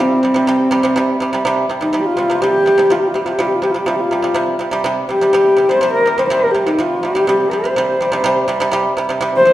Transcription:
0.00 0.18 C3 medium
0.00 0.19 G3 loud
0.00 1.44 C4 medium
0.23 0.33 C3 medium
0.23 0.33 G3 medium
0.34 0.44 C3 medium
0.34 0.45 G3 medium
0.47 0.67 C3 medium
0.47 0.67 G3 loud
0.71 0.81 C3 medium
0.71 0.81 G3 loud
0.83 0.93 C3 medium
0.83 0.94 G3 medium
0.96 1.15 C3 loud
0.96 1.16 G3 loud
1.20 1.30 C3 medium
1.20 1.31 G3 medium
1.33 1.42 C3 medium
1.33 1.43 G3 medium
1.45 1.64 C3 loud
1.45 1.65 G3 loud
1.69 1.79 C3 medium
1.69 1.79 G3 medium
1.81 1.90 C3 medium
1.81 1.91 G3 medium
1.81 2.01 D#4 medium
1.93 2.12 C3 medium
1.93 2.13 G3 medium
1.99 2.06 G4 medium
2.05 2.42 F4 medium
2.17 2.27 C3 medium
2.17 2.27 G3 medium
2.30 2.39 C3 medium
2.30 2.40 G3 medium
2.41 2.61 C3 medium
2.41 2.62 G3 medium
2.41 2.93 G4 loud
2.66 2.75 C3 medium
2.66 2.76 G3 medium
2.78 2.87 C3 medium
2.78 2.88 G3 medium
2.90 3.09 C3 medium
2.90 3.10 G3 medium
2.90 3.00 F4 medium
2.99 3.08 G4 medium
3.07 3.15 F4 medium
3.14 3.24 C3 medium
3.14 3.25 G3 medium
3.14 3.26 G4 medium
3.24 3.36 C3 medium
3.24 3.37 G3 medium
3.24 3.34 F4 medium
3.32 3.41 G4 medium
3.39 3.58 C3 medium
3.39 3.59 G3 medium
3.39 3.48 F4 medium
3.47 3.57 G4 medium
3.55 3.64 F4 medium
3.62 3.72 C3 medium
3.62 3.73 G3 medium
3.62 3.72 G4 medium
3.70 3.80 F4 soft
3.74 3.84 C3 medium
3.74 3.85 G3 medium
3.78 3.87 G4 medium
3.86 4.06 C3 medium
3.86 4.07 G3 medium
3.86 3.96 F4 medium
3.94 4.01 G4 medium
4.00 4.54 F4 medium
4.11 4.21 C3 medium
4.11 4.22 G3 medium
4.22 4.33 C3 medium
4.22 4.33 G3 medium
4.34 4.54 C3 medium
4.34 4.55 G3 medium
4.59 4.69 C3 medium
4.59 4.70 G3 medium
4.71 4.81 C3 medium
4.71 4.82 G3 medium
4.84 5.04 C3 medium
4.84 5.04 G3 loud
5.09 5.18 C3 medium
5.09 5.19 G3 medium
5.09 5.70 G4 medium
5.21 5.31 C3 medium
5.21 5.31 G3 medium
5.33 5.52 C3 medium
5.33 5.53 G3 loud
5.57 5.67 C3 medium
5.57 5.67 G3 medium
5.69 5.79 C3 medium
5.69 5.80 G3 medium
5.69 5.93 C5 medium
5.81 6.01 C3 medium
5.81 6.01 G3 medium
5.94 6.21 A#4 medium
6.06 6.15 C3 medium
6.06 6.16 G3 medium
6.18 6.28 C3 medium
6.18 6.28 G3 medium
6.18 6.28 C5 medium
6.28 6.50 C3 medium
6.28 6.50 G3 loud
6.28 6.41 C5 medium
6.40 6.52 A#4 medium
6.50 6.68 G4 medium
6.54 6.64 C3 medium
6.54 6.65 G3 medium
6.67 6.76 C3 medium
6.67 6.77 G3 medium
6.67 6.81 D#4 medium
6.79 6.98 C3 medium
6.79 6.99 G3 medium
6.79 7.04 F4 medium
7.02 7.13 C3 medium
7.02 7.13 G3 medium
7.02 7.53 G4 medium
7.15 7.25 C3 medium
7.15 7.25 G3 medium
7.27 7.47 C3 medium
7.27 7.47 G3 loud
7.51 7.61 C3 medium
7.51 7.62 G3 medium
7.51 8.90 C5 medium
7.64 7.73 C3 medium
7.64 7.74 G3 medium
7.76 7.95 C3 medium
7.76 7.96 G3 loud
8.01 8.10 C3 medium
8.01 8.11 G3 medium
8.12 8.22 C3 medium
8.12 8.22 G3 medium
8.24 8.44 C3 loud
8.24 8.44 G3 loud
8.48 8.58 C3 medium
8.48 8.58 G3 medium
8.60 8.70 C3 medium
8.60 8.71 G3 loud
8.71 8.92 C3 medium
8.71 8.92 G3 loud
8.97 9.07 C3 medium
8.97 9.07 G3 medium
9.09 9.19 C3 medium
9.09 9.20 G3 medium
9.21 9.41 C3 medium
9.21 9.41 G3 loud
9.37 9.53 C5 loud
9.45 9.53 C3 medium
9.45 9.53 G3 medium

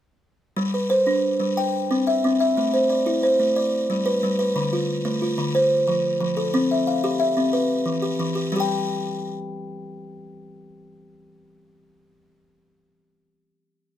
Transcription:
0.56 0.90 G3 medium
0.74 1.24 B4 soft
0.90 1.40 C5 medium
1.07 1.40 D4 medium
1.40 1.57 G3 medium
1.57 2.07 G5 medium
1.91 2.23 C4 medium
2.07 2.39 E5 medium
2.24 2.57 C4 medium
2.40 2.73 E5 medium
2.57 2.90 A3 medium
2.73 3.22 C5 medium
2.90 3.40 D5 medium
3.06 3.40 E4 medium
3.23 3.73 C5 medium
3.40 3.56 A3 medium
3.56 4.06 D5 medium
3.90 4.22 G3 medium
4.06 4.38 B4 medium
4.23 4.56 G3 medium
4.39 4.72 B4 medium
4.56 4.89 D3 medium
4.73 5.21 F4 medium
5.05 5.38 A3 medium
5.22 5.71 F4 medium
5.38 5.54 D3 medium
5.55 6.04 C5 medium
5.88 6.19 F3 medium
6.20 6.53 F3 medium
6.37 6.70 A4 medium
6.54 6.87 C4 medium
6.71 7.18 E5 medium
6.87 7.36 F5 medium
7.04 7.36 G4 medium
7.20 7.69 E5 medium
7.37 7.53 C4 medium
7.53 8.02 B4 medium
7.86 8.18 E3 medium
8.02 8.34 G4 medium
8.20 8.52 E3 medium
8.35 8.55 G4 medium
8.52 12.22 G3 medium
8.56 12.26 G4 medium
8.60 12.30 G5 medium

